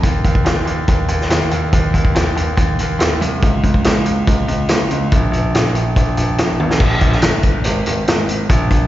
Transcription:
0.03 0.23 D#2 medium
0.03 kick medium
0.03 closed hi-hat medium
0.24 0.43 D#2 medium
0.24 kick medium
0.24 closed hi-hat soft
0.35 kick medium
0.45 0.64 D#2 medium
0.45 snare loud
0.45 closed hi-hat medium
0.65 0.86 D#2 medium
0.65 closed hi-hat soft
0.88 1.07 D#2 medium
0.88 kick medium
0.88 closed hi-hat medium
1.08 1.28 D#2 medium
1.08 closed hi-hat medium
1.21 snare soft
1.30 1.50 D#2 medium
1.30 snare loud
1.30 closed hi-hat medium
1.51 1.71 D#2 medium
1.51 closed hi-hat medium
1.73 1.93 D#2 medium
1.73 kick loud
1.73 closed hi-hat medium
1.94 2.13 D#2 medium
1.94 kick medium
1.94 closed hi-hat medium
2.05 kick medium
2.15 2.35 D#2 medium
2.15 snare loud
2.15 closed hi-hat medium
2.36 2.55 D#2 medium
2.36 closed hi-hat medium
2.57 2.77 D#2 medium
2.57 kick medium
2.57 closed hi-hat medium
2.79 2.97 D#2 medium
2.79 closed hi-hat medium
2.99 3.19 D#2 medium
2.99 snare loud
2.99 closed hi-hat medium
3.21 3.41 C2 medium
3.21 closed hi-hat medium
3.42 3.62 C#2 medium
3.42 kick loud
3.42 closed hi-hat medium
3.64 3.83 C#2 medium
3.64 kick medium
3.64 closed hi-hat medium
3.74 kick medium
3.84 4.04 C#2 medium
3.84 snare loud
3.84 closed hi-hat medium
4.06 4.26 C#2 medium
4.06 closed hi-hat medium
4.27 4.46 C#2 medium
4.27 kick loud
4.27 closed hi-hat medium
4.48 4.68 C#2 medium
4.48 closed hi-hat medium
4.68 4.90 C#2 medium
4.68 snare loud
4.68 closed hi-hat medium
4.91 5.11 C#2 medium
4.91 closed hi-hat medium
5.12 5.30 A#1 medium
5.12 kick loud
5.12 closed hi-hat medium
5.32 5.52 A#1 medium
5.32 closed hi-hat medium
5.55 5.74 A#1 medium
5.55 snare loud
5.55 closed hi-hat medium
5.75 5.95 A#1 medium
5.75 closed hi-hat medium
5.96 6.16 A#1 medium
5.96 kick medium
5.96 closed hi-hat medium
6.17 6.37 A#1 medium
6.17 closed hi-hat medium
6.38 6.58 A#1 medium
6.38 snare loud
6.38 closed hi-hat medium
6.60 6.79 A#1 medium
6.60 high tom medium
6.71 snare medium
6.80 6.96 A#1 medium
6.80 kick loud
6.80 crash loud
7.01 7.18 A#1 medium
7.01 kick medium
7.01 closed hi-hat medium
7.12 snare soft
7.22 7.55 G1 medium
7.22 snare loud
7.22 closed hi-hat loud
7.43 kick medium
7.43 closed hi-hat medium
7.64 7.81 G#1 medium
7.64 closed hi-hat medium
7.86 8.03 G#1 medium
7.86 closed hi-hat medium
8.07 8.40 G#1 medium
8.07 snare loud
8.07 closed hi-hat medium
8.29 closed hi-hat medium
8.49 8.65 A#1 loud
8.49 kick loud
8.49 closed hi-hat medium
8.70 8.86 A#1 medium
8.70 kick medium
8.70 closed hi-hat medium

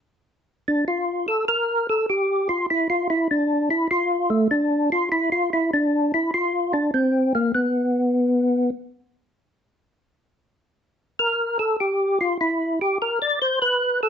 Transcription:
0.68 0.85 D4 medium
0.88 1.26 F4 medium
1.28 1.45 A4 medium
1.48 1.87 A#4 medium
1.89 2.06 A4 medium
2.10 2.48 G4 medium
2.49 2.66 F4 medium
2.70 2.88 E4 medium
2.90 3.08 F4 medium
3.10 3.28 E4 medium
3.31 3.69 D4 medium
3.71 3.88 E4 medium
3.91 4.30 F4 medium
4.30 4.48 A3 medium
4.51 4.90 D4 medium
4.92 5.09 F4 loud
5.12 5.30 E4 medium
5.32 5.50 F4 medium
5.53 5.71 E4 medium
5.73 6.12 D4 medium
6.14 6.31 E4 medium
6.34 6.73 F4 medium
6.73 6.91 D4 medium
6.94 7.33 C4 medium
7.35 7.52 A#3 medium
7.55 8.70 B3 medium
11.19 11.58 A#4 medium
11.59 11.76 A4 medium
11.80 12.19 G4 medium
12.21 12.38 F4 medium
12.41 12.79 E4 medium
12.81 12.98 G4 medium
13.02 13.19 A#4 medium
13.22 13.39 D5 loud
13.42 13.59 C5 medium
13.62 14.01 B4 medium
14.03 14.09 A4 medium

